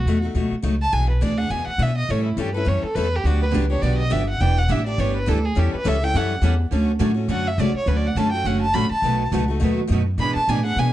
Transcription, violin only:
0.00 0.23 F#4 medium
0.82 0.94 A5 medium
0.93 1.10 G#5 medium
1.10 1.24 B4 soft
1.22 1.39 D5 medium
1.38 1.52 F#5 medium
1.51 1.67 G#5 medium
1.68 1.84 F#5 medium
1.83 1.97 E5 medium
1.98 2.12 D#5 medium
2.11 2.25 C#5 medium
2.26 2.42 E4 soft
2.40 2.55 G4 medium
2.55 2.70 B4 medium
2.68 2.84 C#5 medium
2.85 2.97 A4 medium
2.95 3.18 B4 medium
3.16 3.27 G4 medium
3.26 3.42 F#4 medium
3.42 3.49 B4 medium
3.71 3.84 C#5 medium
3.83 3.98 D5 medium
3.98 4.14 D#5 medium
4.12 4.29 E5 medium
4.30 4.43 F#5 medium
4.41 4.60 G5 loud
4.58 4.73 F#5 medium
4.72 4.86 E5 medium
4.87 5.02 D5 medium
5.00 5.16 C#5 medium
5.17 5.30 B4 medium
5.29 5.47 A4 medium
5.45 5.61 G#4 medium
5.60 5.74 G4 medium
5.75 5.89 B4 medium
5.88 6.06 E5 medium
6.04 6.18 G5 loud
6.17 6.44 F#5 medium
7.32 7.49 F#5 medium
7.48 7.62 E5 medium
7.60 7.76 D5 medium
7.77 7.90 C#5 medium
7.88 7.98 B4 medium
7.97 8.09 D5 medium
8.07 8.19 F#5 medium
8.17 8.32 A5 loud
8.32 8.48 G5 loud
8.47 8.61 F#5 medium
8.62 8.76 A5 medium
8.74 8.91 B5 loud
8.92 9.30 A5 medium
10.20 10.35 B5 loud
10.36 10.51 A5 loud
10.49 10.65 G#5 medium
10.66 10.81 F#5 loud
10.79 10.93 G#5 loud

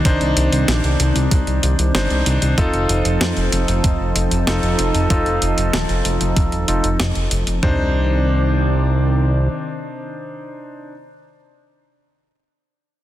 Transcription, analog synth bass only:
0.05 0.18 C2 loud
0.21 0.34 C2 medium
0.37 0.49 C2 medium
0.53 0.65 C2 medium
0.68 0.81 A#1 loud
0.84 0.97 C2 medium
1.00 1.12 C2 loud
1.16 1.28 C2 medium
1.31 1.44 C2 loud
1.47 1.60 C2 medium
1.63 1.76 C2 medium
1.79 1.92 C2 medium
1.95 2.07 G1 medium
2.10 2.23 C2 medium
2.26 2.39 C2 medium
2.42 2.55 C2 medium
2.58 2.70 F1 medium
2.74 2.86 F1 medium
2.90 3.02 F1 medium
3.05 3.18 F1 medium
3.21 3.34 F2 loud
3.37 3.49 F1 medium
3.53 3.65 F1 medium
3.68 3.81 F1 medium
3.84 3.97 F1 loud
4.00 4.13 F1 medium
4.16 4.28 F1 medium
4.31 4.44 F1 medium
4.47 4.60 F1 loud
4.63 4.76 F1 medium
4.79 4.91 F1 medium
4.95 5.07 F1 medium
5.10 5.23 F1 loud
5.26 5.39 F1 medium
5.42 5.55 F1 medium
5.58 5.70 F1 medium
5.74 5.86 D#1 medium
5.89 6.02 F1 medium
6.05 6.18 F1 medium
6.21 6.34 F1 medium
6.37 6.49 F1 loud
6.53 6.65 D#1 medium
6.68 6.81 F1 medium
6.84 6.97 F1 medium
7.00 7.12 F1 medium
7.16 7.28 F1 medium
7.31 7.44 F1 medium
7.47 7.60 F1 medium
7.63 9.48 C2 medium

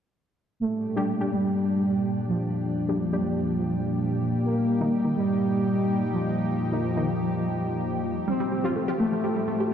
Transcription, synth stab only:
0.96 1.13 G3 medium
0.96 1.13 D4 medium
0.96 1.13 G4 loud
1.20 1.30 G3 medium
1.20 1.30 D4 medium
1.20 1.30 G4 medium
2.88 2.99 G3 medium
2.88 2.98 D4 medium
2.88 2.98 G4 medium
3.12 3.22 G3 medium
3.12 3.23 D4 medium
3.12 3.23 G4 medium
4.80 4.97 D#3 medium
4.80 4.97 A#3 medium
4.80 4.97 D#4 loud
5.04 5.14 D#3 medium
5.04 5.14 A#3 medium
5.04 5.14 D#4 medium
6.72 6.82 D#3 medium
6.72 6.82 A#3 medium
6.72 6.82 D#4 medium
6.96 7.06 D#3 medium
6.96 7.07 A#3 medium
6.96 7.07 D#4 medium
8.64 8.81 F3 medium
8.64 8.81 C4 medium
8.64 8.81 F4 loud
8.88 8.98 F3 medium
8.88 8.98 C4 medium
8.88 8.98 F4 medium

